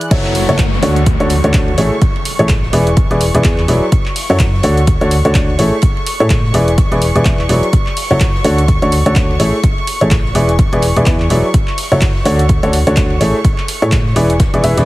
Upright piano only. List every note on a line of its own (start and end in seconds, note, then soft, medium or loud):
0.11 0.43 F#3 loud
0.11 0.43 E4 medium
0.11 0.43 F#4 medium
0.11 0.43 A4 medium
0.11 0.43 C#5 loud
0.49 0.60 F#3 medium
0.49 0.60 E4 medium
0.49 0.60 F#4 medium
0.49 0.60 A4 medium
0.49 0.60 C#5 loud
0.83 0.97 D3 loud
0.83 0.97 D4 medium
0.83 0.97 F#4 medium
0.83 0.97 A4 medium
0.83 0.97 C#5 loud
1.20 1.31 D3 medium
1.20 1.31 D4 medium
1.20 1.31 F#4 medium
1.20 1.31 A4 medium
1.20 1.31 C#5 loud
1.44 1.53 D3 medium
1.44 1.52 D4 medium
1.44 1.53 F#4 medium
1.44 1.53 A4 medium
1.44 1.52 C#5 loud
1.54 1.69 D4 medium
1.54 1.69 F#4 medium
1.78 1.93 A3 medium
1.78 1.93 E4 medium
1.78 1.93 G#4 medium
1.78 1.93 A4 medium
1.78 1.93 C#5 medium
2.39 2.50 A3 medium
2.39 2.50 E4 medium
2.39 2.50 G#4 medium
2.39 2.50 A4 medium
2.39 2.50 C#5 loud
2.73 2.88 E3 loud
2.73 2.88 E4 medium
2.73 2.88 G#4 medium
2.73 2.88 B4 medium
2.73 2.88 D5 loud
3.11 3.22 E3 loud
3.11 3.22 E4 medium
3.11 3.22 G#4 medium
3.11 3.22 B4 medium
3.11 3.22 D5 loud
3.35 3.43 E3 medium
3.35 3.43 E4 medium
3.35 3.43 G#4 medium
3.35 3.43 B4 medium
3.35 3.43 D5 loud
3.68 3.83 F#3 medium
3.68 3.83 E4 medium
3.68 3.83 G#4 medium
3.68 3.83 B4 medium
3.68 3.83 D5 medium
4.30 4.41 F#3 medium
4.30 4.41 E4 medium
4.30 4.41 F#4 medium
4.30 4.41 A4 medium
4.30 4.41 C#5 loud
4.64 4.78 D3 loud
4.64 4.78 D4 medium
4.64 4.78 F#4 medium
4.64 4.78 A4 medium
4.64 4.78 C#5 loud
5.01 5.12 D3 loud
5.01 5.12 D4 medium
5.01 5.12 F#4 medium
5.01 5.12 A4 medium
5.01 5.12 C#5 loud
5.25 5.33 D3 medium
5.25 5.33 D4 medium
5.25 5.33 F#4 medium
5.25 5.33 A4 medium
5.25 5.33 C#5 loud
5.35 5.50 D4 medium
5.35 5.50 F#4 medium
5.59 5.73 A3 medium
5.59 5.73 E4 medium
5.59 5.73 G#4 medium
5.59 5.73 A4 medium
5.59 5.73 C#5 medium
6.20 6.31 A3 medium
6.20 6.31 E4 medium
6.20 6.31 G#4 medium
6.20 6.31 A4 medium
6.20 6.31 C#5 loud
6.54 6.69 E3 loud
6.54 6.69 E4 medium
6.54 6.69 G#4 medium
6.54 6.69 B4 medium
6.54 6.69 D5 loud
6.92 7.03 E3 loud
6.92 7.03 E4 medium
6.92 7.03 G#4 medium
6.92 7.03 B4 medium
6.92 7.03 D5 loud
7.15 7.24 E3 medium
7.15 7.24 E4 medium
7.15 7.24 G#4 medium
7.15 7.24 B4 medium
7.15 7.24 D5 loud
7.25 7.40 E3 medium
7.25 7.40 E4 medium
7.25 7.40 G#4 medium
7.49 7.64 F#3 medium
7.49 7.64 E4 medium
7.49 7.64 G#4 medium
7.49 7.64 B4 medium
7.49 7.64 D5 medium
8.11 8.22 F#3 medium
8.11 8.22 E4 medium
8.11 8.22 F#4 medium
8.11 8.22 A4 medium
8.11 8.22 C#5 loud
8.44 8.59 D3 medium
8.44 8.59 D4 medium
8.44 8.59 F#4 medium
8.44 8.59 A4 medium
8.44 8.59 C#5 loud
8.82 8.93 D3 medium
8.82 8.93 D4 medium
8.82 8.93 F#4 medium
8.82 8.93 A4 medium
8.82 8.93 C#5 loud
9.06 9.14 D3 medium
9.06 9.14 D4 medium
9.06 9.14 F#4 medium
9.06 9.14 A4 medium
9.06 9.14 C#5 loud
9.16 9.31 D4 medium
9.16 9.31 F#4 medium
9.16 9.31 A4 medium
9.40 9.54 A3 medium
9.40 9.54 E4 medium
9.40 9.54 G#4 medium
9.40 9.54 A4 medium
9.40 9.54 C#5 medium
10.01 10.12 A3 medium
10.01 10.12 E4 medium
10.01 10.12 G#4 medium
10.01 10.12 A4 medium
10.01 10.12 C#5 loud
10.35 10.50 E3 loud
10.35 10.50 E4 medium
10.35 10.50 G#4 medium
10.35 10.50 B4 medium
10.35 10.50 D5 loud
10.73 10.84 E3 loud
10.73 10.84 E4 medium
10.73 10.84 G#4 medium
10.73 10.84 B4 medium
10.73 10.84 D5 loud
10.96 11.05 E3 medium
10.96 11.05 E4 medium
10.96 11.05 G#4 medium
10.96 11.05 B4 medium
10.96 11.05 D5 loud
11.06 11.21 E3 medium
11.06 11.21 E4 medium
11.06 11.21 G#4 medium
11.06 11.21 B4 medium
11.06 11.21 D5 medium
11.30 11.45 F#3 medium
11.30 11.45 E4 medium
11.30 11.45 G#4 medium
11.30 11.45 B4 medium
11.30 11.45 D5 medium
11.92 12.03 F#3 medium
11.92 12.03 E4 medium
11.92 12.03 F#4 medium
11.92 12.03 A4 medium
11.92 12.03 C#5 loud
12.25 12.40 D3 loud
12.25 12.40 D4 medium
12.25 12.40 F#4 medium
12.25 12.40 A4 medium
12.25 12.40 C#5 loud
12.63 12.74 D3 loud
12.63 12.74 D4 medium
12.63 12.74 F#4 medium
12.63 12.74 A4 medium
12.63 12.74 C#5 loud
12.87 12.95 D3 medium
12.87 12.95 D4 medium
12.87 12.95 F#4 medium
12.87 12.95 A4 medium
12.87 12.95 C#5 loud
12.97 13.12 D4 medium
13.21 13.35 A3 medium
13.21 13.35 E4 medium
13.21 13.35 G#4 medium
13.21 13.35 A4 medium
13.21 13.35 C#5 medium
13.82 13.93 A3 medium
13.82 13.93 E4 medium
13.82 13.93 G#4 medium
13.82 13.93 A4 medium
13.82 13.93 C#5 loud
14.16 14.31 E3 loud
14.16 14.31 E4 medium
14.16 14.31 G#4 medium
14.16 14.31 B4 medium
14.16 14.31 D5 loud
14.54 14.62 E3 medium
14.54 14.62 E4 medium
14.54 14.62 G#4 medium
14.54 14.62 B4 medium
14.54 14.62 D5 loud
14.64 14.74 E3 medium
14.64 14.74 E4 medium
14.64 14.74 G#4 medium
14.64 14.74 B4 medium
14.64 14.74 E5 loud
14.77 14.85 E3 medium
14.77 14.85 E4 medium
14.77 14.85 G#4 medium
14.77 14.85 B4 medium
14.77 14.85 D5 medium